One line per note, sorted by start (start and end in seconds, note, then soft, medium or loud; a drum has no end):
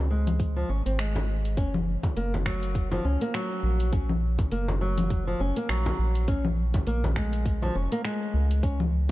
0.00 0.64 C#2 medium
0.10 0.55 G#3 medium
0.27 open hi-hat medium
0.27 low conga medium
0.27 shaker medium
0.40 kick loud
0.40 open hi-hat soft
0.40 shaker medium
0.56 0.68 F3 medium
0.56 shaker soft
0.69 0.82 G#1 medium
0.69 0.85 C#4 medium
0.86 1.59 G#1 medium
0.86 0.97 C4 medium
0.86 open hi-hat medium
0.86 shaker medium
0.99 1.56 G#3 medium
0.99 finger snap medium
0.99 open hi-hat soft
0.99 shaker medium
1.16 frame drum medium
1.16 shaker soft
1.45 open hi-hat soft
1.45 shaker medium
1.57 1.97 F#1 medium
1.57 1.73 C#4 medium
1.57 kick loud
1.57 open hi-hat soft
1.57 shaker medium
1.74 low conga medium
1.74 shaker soft
2.03 kick loud
2.03 open hi-hat soft
2.03 frame drum medium
2.03 shaker medium
2.16 3.00 F#1 medium
2.16 2.32 A#3 medium
2.16 open hi-hat soft
2.16 shaker medium
2.34 frame drum medium
2.34 shaker soft
2.46 2.90 F#3 medium
2.46 finger snap medium
2.46 kick medium
2.63 open hi-hat medium
2.63 shaker medium
2.75 kick loud
2.75 open hi-hat soft
2.75 shaker medium
2.91 3.04 F3 medium
2.91 frame drum medium
2.91 shaker soft
3.04 3.17 C#2 medium
3.04 3.20 C#4 medium
3.21 3.33 A#3 medium
3.21 open hi-hat soft
3.21 shaker medium
3.34 3.92 F#3 medium
3.34 finger snap medium
3.34 open hi-hat soft
3.34 shaker medium
3.51 shaker soft
3.63 4.47 A#1 loud
3.80 open hi-hat medium
3.80 shaker medium
3.93 4.09 C#4 medium
3.93 kick loud
3.93 open hi-hat soft
3.93 shaker medium
4.09 low conga medium
4.09 shaker soft
4.38 kick loud
4.38 open hi-hat medium
4.38 frame drum medium
4.38 shaker medium
4.51 5.35 F#1 loud
4.51 4.67 A#3 medium
4.51 open hi-hat soft
4.51 shaker medium
4.68 frame drum medium
4.68 shaker soft
4.81 5.25 F#3 medium
4.98 open hi-hat medium
4.98 low conga medium
4.98 shaker medium
5.10 kick loud
5.10 open hi-hat soft
5.10 shaker medium
5.27 5.39 F3 medium
5.27 shaker soft
5.40 5.52 F#1 medium
5.40 5.56 C#4 medium
5.56 5.68 A#3 medium
5.56 open hi-hat medium
5.56 shaker medium
5.69 5.92 A#1 medium
5.69 6.27 F#3 medium
5.69 finger snap medium
5.69 open hi-hat soft
5.69 shaker medium
5.86 frame drum medium
5.86 shaker soft
5.99 6.82 A#1 medium
6.15 open hi-hat soft
6.15 shaker medium
6.28 6.44 C#4 medium
6.28 kick loud
6.28 open hi-hat soft
6.28 shaker medium
6.45 low conga medium
6.45 shaker soft
6.74 kick loud
6.74 open hi-hat medium
6.74 frame drum medium
6.74 shaker medium
6.87 7.70 A#1 loud
6.87 7.03 A#3 medium
6.87 open hi-hat soft
6.87 shaker medium
7.04 frame drum medium
7.04 shaker soft
7.16 7.61 G#3 medium
7.16 finger snap medium
7.16 kick medium
7.33 open hi-hat medium
7.33 shaker medium
7.46 kick medium
7.46 open hi-hat soft
7.46 shaker medium
7.62 7.74 F3 medium
7.62 frame drum medium
7.62 shaker soft
7.75 7.88 F1 medium
7.75 7.91 C#4 medium
7.92 8.03 A#3 medium
7.92 open hi-hat medium
7.92 shaker medium
8.05 8.62 G#3 medium
8.05 finger snap medium
8.05 open hi-hat soft
8.05 shaker medium
8.22 shaker soft
8.34 9.11 C#2 loud
8.51 open hi-hat medium
8.51 shaker medium
8.63 8.79 C#4 medium
8.63 kick loud
8.63 open hi-hat soft
8.63 shaker medium
8.80 low conga medium
8.80 shaker soft